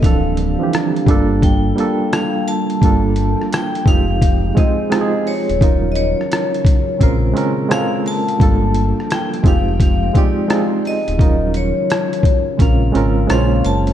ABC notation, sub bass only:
X:1
M:4/4
L:1/16
Q:"Swing 16ths" 1/4=86
K:Fmix
V:1 name="Sub bass" clef=bass
D,,,3 z3 G,,,4 z6 | G,,,3 z3 F,,,4 z4 z D,,, | E,,,3 z4 z B,,,2 z6 | G,,,3 z3 F,,,4 z4 z D,,, |
E,,,3 z4 z B,,,2 _A,,,2 B,,,2 ^F,,,2 |]